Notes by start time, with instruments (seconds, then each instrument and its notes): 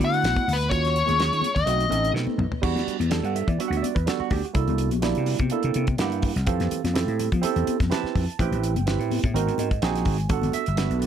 Already playing: tine electric piano A3 B3 E4 F#4
0.00 slap bass D3, kick, closed hi-hat, high conga
0.05 lead electric guitar F#5, flute F#6
0.14 closed hi-hat
0.23 slap bass B1, snare, closed hi-hat
0.36 muted slap bass stroke, kick, closed hi-hat, high conga
0.47 slap bass D2, open hi-hat, low conga
0.52 lead electric guitar B4, flute B5
0.61 closed hi-hat
0.69 slap bass D#2, tine electric piano A#3 C#4 F4 F#4, lead electric guitar C#5, flute C#6, kick, closed hi-hat
0.85 snare, closed hi-hat
0.96 closed hi-hat
1.05 slap bass D#2, tine electric piano A#3 C#4 F4 G#4, closed hi-hat, high conga
1.20 snare, closed hi-hat
1.32 slap bass D#3, closed hi-hat
1.42 closed hi-hat, high conga, low conga
1.55 slap bass D#2, lead electric guitar D#5, flute D#6, kick, closed hi-hat
1.66 slap bass B1, tine electric piano A3 C4 D#4 F#4, closed hi-hat
1.79 closed hi-hat, low conga
1.89 slap bass A1, tine electric piano A3 C4 D#4 A4, closed hi-hat, high conga
2.05 closed hi-hat
2.14 slap bass B2, tine electric piano B4, snare
2.27 muted slap bass stroke, high conga
2.38 slap bass B1, mid tom, low conga
2.51 muted slap bass stroke, floor tom
2.62 slap bass E2, tine electric piano G3 B3 D4 F#4, kick, crash
2.76 slap bass E2, snare, closed hi-hat, high conga
2.88 muted slap bass stroke, closed hi-hat, low conga
2.99 slap bass E2, closed hi-hat, high conga
3.10 tine electric piano G3 B3 D4 A4, snare, closed hi-hat
3.23 slap bass G2, tine electric piano F#5, closed hi-hat
3.35 tine electric piano E5, closed hi-hat, low conga
3.48 slap bass E3, tine electric piano D5, kick, closed hi-hat, high conga
3.58 tine electric piano G3 B3 D4 F#4 E5, muted slap bass stroke, closed hi-hat
3.68 slap bass D2, tine electric piano F#5
3.73 closed hi-hat
3.77 tine electric piano E5
3.82 tine electric piano D5, muted slap bass stroke, closed hi-hat, high conga
3.95 slap bass E2, tine electric piano B4, kick, closed hi-hat
4.06 tine electric piano G3 B3 D4 F#4 A4, snare, closed hi-hat
4.20 tine electric piano F#4, muted slap bass stroke
4.31 slap bass D2, tine electric piano G4, kick, open hi-hat, low conga
4.44 tine electric piano F#4, closed hi-hat
4.53 slap bass C2, tine electric piano A#3 D4 E4 A4, kick, closed hi-hat
4.68 slap bass C2, closed hi-hat, high conga
4.78 closed hi-hat
4.91 slap bass A#1, closed hi-hat, high conga
5.02 tine electric piano G3 A#3 D4 E4, snare, closed hi-hat
5.15 slap bass C3, closed hi-hat
5.26 open hi-hat, low conga
5.39 slap bass C3, kick, closed hi-hat, high conga
5.50 tine electric piano A#3 D4 E4 A4, closed hi-hat
5.63 slap bass C3, closed hi-hat
5.74 slap bass C3, closed hi-hat, high conga
5.87 kick, closed hi-hat
5.98 slap bass G2, tine electric piano A#3 D4 E4 G4 F#5, snare, closed hi-hat
6.12 closed hi-hat
6.22 kick, open hi-hat, low conga
6.36 slap bass C2, snare, closed hi-hat
6.46 slap bass F2, tine electric piano E3 C4 G4 A4 F5, kick, closed hi-hat
6.60 slap bass F2, snare, closed hi-hat, high conga
6.71 muted slap bass stroke, closed hi-hat, low conga
6.84 slap bass F2, snare, closed hi-hat, high conga
6.94 tine electric piano C4 E4 G4 A4, snare, closed hi-hat
7.08 slap bass A2, closed hi-hat
7.19 closed hi-hat, low conga
7.32 slap bass F3, kick, closed hi-hat, high conga
7.42 tine electric piano C4 E4 G4 A4, muted slap bass stroke, closed hi-hat
7.56 slap bass E2, closed hi-hat
7.67 muted slap bass stroke, closed hi-hat, high conga
7.80 slap bass F2, kick, snare, closed hi-hat
7.90 tine electric piano C4 E4 G4 B4 A5, snare, closed hi-hat
8.04 muted slap bass stroke, snare
8.15 slap bass F2, kick, open hi-hat, low conga
8.30 closed hi-hat
8.39 slap bass A1, tine electric piano C4 E4 G4 B4 G5, kick, closed hi-hat
8.51 slap bass A1, closed hi-hat
8.64 closed hi-hat
8.75 slap bass G1, closed hi-hat, high conga
8.86 tine electric piano C4 E4 G4 B4, snare, closed hi-hat
8.99 slap bass A2, closed hi-hat
9.11 open hi-hat, high conga, low conga
9.24 slap bass A2, kick, closed hi-hat, high conga
9.34 slap bass G#1, tine electric piano C4 D#4 F#4 A#4, closed hi-hat
9.47 slap bass G#2, closed hi-hat
9.58 slap bass G#2, tine electric piano D#5, closed hi-hat, high conga, low conga
9.71 kick, closed hi-hat
9.82 slap bass A#1, tine electric piano C4 D#4 F#4 G#4 G#5, snare, closed hi-hat
9.96 snare, closed hi-hat
10.05 slap bass G#1, kick, open hi-hat, low conga
10.18 closed hi-hat
10.29 slap bass G1, ambient pad D3 G3 A3 B3 F#4, tine electric piano B3 D4 F#4 A4, kick, closed hi-hat
10.33 tine electric piano F#5
10.42 slap bass G1, closed hi-hat, high conga
10.52 tine electric piano E5, muted slap bass stroke, closed hi-hat, low conga
10.66 slap bass G1, closed hi-hat
10.77 tine electric piano B3 D4 F#4 B4, snare, closed hi-hat
10.90 slap bass B1, closed hi-hat
11.00 closed hi-hat, low conga